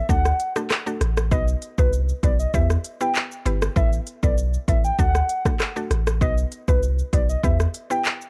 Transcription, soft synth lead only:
0, 0, Header, 1, 2, 480
1, 0, Start_track
1, 0, Key_signature, 1, "minor"
1, 0, Tempo, 612245
1, 1031, Time_signature, 4, 2, 24, 8
1, 6504, End_track
2, 0, Start_track
2, 0, Title_t, "Soft synth lead"
2, 0, Program_c, 0, 80
2, 70, Note_on_c, 0, 78, 109
2, 416, Note_off_c, 0, 78, 0
2, 1029, Note_on_c, 0, 75, 112
2, 1137, Note_off_c, 0, 75, 0
2, 1398, Note_on_c, 0, 71, 86
2, 1493, Note_off_c, 0, 71, 0
2, 1751, Note_on_c, 0, 74, 90
2, 1857, Note_off_c, 0, 74, 0
2, 1878, Note_on_c, 0, 75, 79
2, 1973, Note_off_c, 0, 75, 0
2, 1991, Note_on_c, 0, 76, 83
2, 2098, Note_off_c, 0, 76, 0
2, 2358, Note_on_c, 0, 79, 84
2, 2452, Note_off_c, 0, 79, 0
2, 2951, Note_on_c, 0, 76, 102
2, 3058, Note_off_c, 0, 76, 0
2, 3317, Note_on_c, 0, 74, 76
2, 3412, Note_off_c, 0, 74, 0
2, 3671, Note_on_c, 0, 76, 82
2, 3778, Note_off_c, 0, 76, 0
2, 3798, Note_on_c, 0, 79, 79
2, 3893, Note_off_c, 0, 79, 0
2, 3912, Note_on_c, 0, 78, 111
2, 4257, Note_off_c, 0, 78, 0
2, 4872, Note_on_c, 0, 75, 115
2, 4978, Note_off_c, 0, 75, 0
2, 5240, Note_on_c, 0, 71, 77
2, 5333, Note_off_c, 0, 71, 0
2, 5591, Note_on_c, 0, 74, 89
2, 5697, Note_off_c, 0, 74, 0
2, 5719, Note_on_c, 0, 75, 78
2, 5813, Note_off_c, 0, 75, 0
2, 5832, Note_on_c, 0, 76, 82
2, 5938, Note_off_c, 0, 76, 0
2, 6198, Note_on_c, 0, 79, 80
2, 6293, Note_off_c, 0, 79, 0
2, 6504, End_track
0, 0, End_of_file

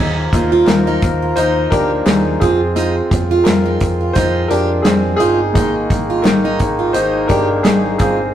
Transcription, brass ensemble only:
0, 0, Header, 1, 2, 480
1, 0, Start_track
1, 0, Tempo, 697269
1, 1903, Time_signature, 4, 2, 24, 8
1, 5741, End_track
2, 0, Start_track
2, 0, Title_t, "Brass ensemble"
2, 0, Program_c, 0, 61
2, 0, Note_on_c, 0, 53, 72
2, 0, Note_on_c, 0, 58, 65
2, 0, Note_on_c, 0, 65, 69
2, 0, Note_on_c, 0, 70, 80
2, 1641, Note_off_c, 0, 70, 0
2, 1643, Note_off_c, 0, 53, 0
2, 1645, Note_off_c, 0, 58, 0
2, 1672, Note_on_c, 0, 60, 76
2, 1675, Note_on_c, 0, 56, 84
2, 3792, Note_off_c, 0, 65, 0
2, 3806, Note_off_c, 0, 60, 0
2, 3818, Note_on_c, 0, 58, 70
2, 3819, Note_on_c, 0, 51, 85
2, 5722, Note_off_c, 0, 51, 0
2, 5722, Note_off_c, 0, 58, 0
2, 5741, Note_off_c, 0, 56, 0
2, 5741, End_track
0, 0, End_of_file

